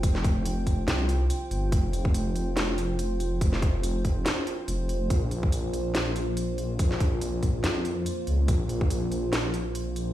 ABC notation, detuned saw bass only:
X:1
M:4/4
L:1/8
Q:"Swing 16ths" 1/4=142
K:Bbdor
V:1 name="Detuned saw bass" clef=bass
F,,,4 C,,2 z G,,, | F,,,2 F,,,6 | F,,,4 z2 F,,,2 | B,,,2 B,,,6 |
B,,,4 F,,2 z D,, | B,,,2 B,,,6 |]